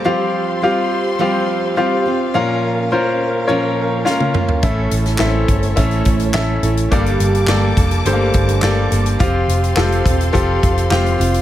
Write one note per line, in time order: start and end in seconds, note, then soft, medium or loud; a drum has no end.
0.00 2.30 G4 medium
0.04 0.65 F3 medium
0.04 0.61 G3 medium
0.04 0.61 C4 medium
0.04 0.59 C4 medium
0.04 0.59 F4 medium
0.04 0.63 F4 medium
0.04 0.59 G4 medium
0.04 0.63 G4 medium
0.04 2.31 C5 medium
0.04 4.59 F5 medium
0.04 0.59 F5 medium
0.04 2.31 C6 medium
0.62 1.18 G3 medium
0.62 1.18 C4 medium
0.62 1.17 C4 medium
0.62 1.17 F4 medium
0.62 1.19 F4 medium
0.62 1.17 G4 medium
0.62 1.19 G4 medium
0.62 1.17 F5 medium
1.19 1.79 F3 medium
1.19 1.75 G3 medium
1.19 1.76 C4 medium
1.19 1.74 C4 medium
1.19 1.78 F4 medium
1.19 1.74 F4 medium
1.19 1.77 G4 medium
1.19 1.74 G4 medium
1.19 1.74 F5 medium
1.76 2.05 G3 medium
1.76 2.05 C4 medium
1.76 2.31 C4 medium
1.76 2.31 F4 medium
1.76 2.06 F4 medium
1.76 2.31 G4 medium
1.76 2.04 G4 medium
1.76 2.31 F5 medium
2.06 2.34 C4 medium
2.06 2.34 F4 medium
2.06 2.34 G4 medium
2.34 2.91 A#2 medium
2.34 3.16 A#2 medium
2.34 2.91 F3 medium
2.34 2.89 A#3 medium
2.34 2.88 C#4 medium
2.34 2.91 C#4 medium
2.34 4.61 C#4 medium
2.34 2.88 F4 medium
2.34 2.91 F4 medium
2.34 2.88 A#4 medium
2.34 4.61 A#4 medium
2.34 2.92 A#4 medium
2.34 2.88 F5 medium
2.91 3.48 A#3 medium
2.91 3.49 C#4 medium
2.91 3.45 C#4 medium
2.91 3.45 F4 medium
2.91 3.49 F4 medium
2.91 3.46 A#4 medium
2.91 3.49 A#4 medium
2.91 3.45 C5 medium
3.47 4.06 A#2 medium
3.47 4.06 F3 medium
3.47 4.04 A#3 medium
3.47 4.02 C#4 medium
3.47 4.05 C#4 medium
3.47 4.02 F4 medium
3.47 4.05 F4 medium
3.47 4.02 A#4 medium
3.47 4.06 A#4 medium
3.47 4.02 C#5 medium
4.05 4.34 A#3 medium
4.05 4.59 C#4 medium
4.05 4.34 C#4 medium
4.05 4.59 F4 medium
4.05 4.34 F4 medium
4.05 4.59 A#4 medium
4.05 4.32 A#4 medium
4.05 4.60 F5 medium
4.05 snare medium
4.20 high tom medium
4.34 4.63 A#3 medium
4.34 4.62 C#4 soft
4.34 4.63 F4 medium
4.34 4.62 A#4 medium
4.34 mid tom medium
4.49 floor tom medium
4.62 4.86 A1 medium
4.62 5.20 A2 medium
4.62 5.45 A2 medium
4.62 5.20 E3 medium
4.62 5.20 A3 medium
4.62 5.17 C#4 medium
4.62 5.20 C#4 medium
4.62 5.17 E4 medium
4.62 5.21 E4 medium
4.62 5.17 A4 medium
4.62 6.90 A4 medium
4.62 5.23 A4 medium
4.62 6.89 C#5 medium
4.62 5.17 E5 medium
4.62 6.90 E5 medium
4.62 kick medium
4.62 closed hi-hat medium
4.91 5.15 A1 medium
4.91 closed hi-hat medium
5.06 snare soft
5.06 closed hi-hat soft
5.19 5.44 A1 medium
5.19 5.49 A3 medium
5.19 5.26 C4 medium
5.19 5.49 C#4 medium
5.19 5.74 E4 medium
5.19 5.49 E4 medium
5.19 5.74 A4 medium
5.19 5.74 E5 medium
5.19 snare loud
5.19 clap medium
5.23 5.74 C#4 medium
5.23 5.47 A4 medium
5.48 5.72 G1 medium
5.48 5.77 A3 soft
5.48 5.77 C#4 soft
5.48 5.78 E4 soft
5.48 5.77 A4 medium
5.48 kick medium
5.48 closed hi-hat medium
5.63 closed hi-hat soft
5.76 6.01 A1 medium
5.76 6.34 A2 medium
5.76 6.35 E3 medium
5.76 6.34 A3 medium
5.76 6.30 C#4 medium
5.76 6.34 C#4 medium
5.76 6.31 E4 medium
5.76 6.35 E4 medium
5.76 6.31 A4 medium
5.76 6.36 A4 medium
5.76 6.31 E5 medium
5.76 kick medium
5.76 closed hi-hat medium
5.91 closed hi-hat soft
6.05 6.29 A1 medium
6.05 kick medium
6.05 closed hi-hat medium
6.20 closed hi-hat soft
6.34 6.57 A1 medium
6.34 6.63 A3 medium
6.34 6.88 C#4 medium
6.34 6.63 C#4 medium
6.34 6.88 E4 medium
6.34 6.63 E4 medium
6.34 6.88 A4 medium
6.34 6.62 A4 medium
6.34 6.88 E5 medium
6.34 snare loud
6.34 clap medium
6.63 6.86 A1 medium
6.63 6.92 A3 medium
6.63 6.92 C#4 medium
6.63 6.92 E4 medium
6.63 6.91 A4 medium
6.63 closed hi-hat medium
6.77 closed hi-hat soft
6.90 7.15 G1 medium
6.90 7.73 G2 medium
6.90 7.49 G2 medium
6.90 7.49 D3 medium
6.90 7.49 G3 medium
6.90 9.17 A#3 medium
6.90 7.45 A#3 medium
6.90 7.49 A#3 medium
6.90 7.50 D4 loud
6.90 11.42 G4 medium
6.90 7.45 G4 medium
6.90 7.45 A4 medium
6.90 7.50 A4 medium
6.90 7.46 D5 medium
6.90 9.17 A5 medium
6.90 9.17 D6 medium
6.90 kick medium
6.90 closed hi-hat medium
7.06 closed hi-hat soft
7.20 7.43 G1 medium
7.20 closed hi-hat medium
7.35 closed hi-hat soft
7.47 7.71 G1 medium
7.47 7.77 G3 medium
7.47 8.02 A#3 medium
7.47 7.78 A#3 medium
7.47 7.77 D4 medium
7.47 8.03 G4 medium
7.47 8.03 A4 medium
7.47 8.03 D5 medium
7.47 snare loud
7.47 clap medium
7.51 7.76 A4 medium
7.77 8.00 F1 medium
7.77 8.05 G3 soft
7.77 8.05 A#3 soft
7.77 8.05 D4 soft
7.77 8.06 A4 medium
7.77 kick medium
7.77 closed hi-hat medium
7.91 closed hi-hat soft
8.05 8.29 G1 medium
8.05 8.63 G2 medium
8.05 8.63 D3 medium
8.05 8.61 G3 medium
8.05 8.13 A3 medium
8.05 8.61 A#3 medium
8.05 8.63 D4 loud
8.05 8.60 G4 medium
8.05 8.60 A4 medium
8.05 8.63 A4 medium
8.05 8.60 C5 medium
8.05 closed hi-hat medium
8.13 8.62 A#3 medium
8.34 8.58 G1 medium
8.34 kick medium
8.34 closed hi-hat medium
8.49 closed hi-hat soft
8.62 8.86 G1 loud
8.62 8.91 G3 medium
8.62 8.91 A#3 medium
8.62 9.17 A#3 medium
8.62 8.91 D4 medium
8.62 9.17 G4 medium
8.62 9.17 A4 medium
8.62 8.89 A4 medium
8.62 9.17 D5 medium
8.62 snare medium
8.62 clap medium
8.91 9.15 G1 medium
8.91 9.19 G3 medium
8.91 9.19 A#3 medium
8.91 9.20 D4 medium
8.91 9.20 A4 medium
8.91 closed hi-hat medium
9.06 closed hi-hat soft
9.19 9.44 F1 loud
9.19 9.74 F3 medium
9.19 9.76 C4 medium
9.19 9.74 C4 medium
9.19 9.74 F4 medium
9.19 9.76 F4 medium
9.19 9.74 G4 medium
9.19 9.78 G4 medium
9.19 11.42 C5 medium
9.19 11.42 F5 medium
9.19 9.74 F5 medium
9.19 11.42 C6 medium
9.19 kick loud
9.19 closed hi-hat medium
9.48 9.72 F1 medium
9.48 closed hi-hat medium
9.64 closed hi-hat soft
9.75 10.00 F1 medium
9.75 10.05 F3 medium
9.75 10.05 C4 medium
9.75 10.31 C4 medium
9.75 10.31 F4 medium
9.75 10.05 F4 medium
9.75 10.31 G4 medium
9.75 10.03 G4 medium
9.75 10.31 A4 medium
9.75 snare loud
9.75 clap medium
9.92 closed hi-hat soft
10.04 10.29 E1 medium
10.04 10.32 C4 soft
10.04 10.32 F4 soft
10.04 10.33 G4 medium
10.04 kick medium
10.04 closed hi-hat medium
10.21 closed hi-hat soft
10.33 10.58 F1 loud
10.33 10.89 F3 medium
10.33 10.90 C4 medium
10.33 10.88 C4 medium
10.33 10.88 F4 medium
10.33 10.90 F4 medium
10.33 10.88 G4 medium
10.33 10.92 G4 loud
10.33 10.87 A4 medium
10.33 kick medium
10.33 closed hi-hat medium
10.63 10.86 F1 medium
10.63 kick medium
10.63 closed hi-hat medium
10.78 closed hi-hat soft
10.90 11.14 F1 medium
10.90 11.19 F3 medium
10.90 11.19 C4 medium
10.90 11.42 C4 medium
10.90 11.42 F4 medium
10.90 11.18 F4 medium
10.90 11.42 G4 medium
10.90 11.17 G4 medium
10.90 11.42 F5 medium
10.90 snare medium
10.90 clap medium
11.06 closed hi-hat soft
11.18 11.42 F1 medium
11.18 11.42 C4 soft
11.18 11.42 F4 medium
11.18 11.42 G4 medium
11.18 closed hi-hat medium
11.34 closed hi-hat soft